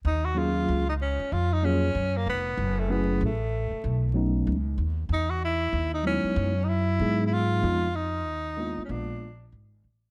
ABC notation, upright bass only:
X:1
M:4/4
L:1/16
Q:"Swing 16ths" 1/4=95
K:Ebm
V:1 name="Upright bass" clef=bass
E,,4 D,,3 z F,,4 G,,2 F,,,2 | G,,,4 =A,,,3 z =B,,,4 D,,2 ^D,,2 | =E,,4 ^D,,3 z G,,4 ^G,,4 | F,,4 E,,3 z B,,,4 A,,,2 =A,,,2 |]